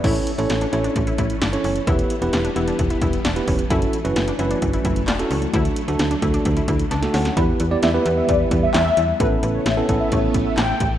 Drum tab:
CC |x---------------|----------------|----------------|----------------|
HH |-xxxxxxxxxxxxxox|xxxxxxxxxxxxxxox|xxxxxxxxxxxxxxox|xxxxxxxxxxxxxxox|
CP |----------------|----------------|------------x---|----------------|
SD |----o-------o---|----o-------o---|----o-------o---|----o-------oooo|
BD |o-------o-o-----|o-------o-o---o-|o-------o-o-----|o-----o-o-o-----|

CC |----------------|----------------|
HH |x-x-x-x-x-x-x-x-|x-x-x-x-x-x-x-x-|
CP |------------x---|------------x---|
SD |----o-------o---|----o-------o---|
BD |o-------o-o-----|o-----o-o-o---o-|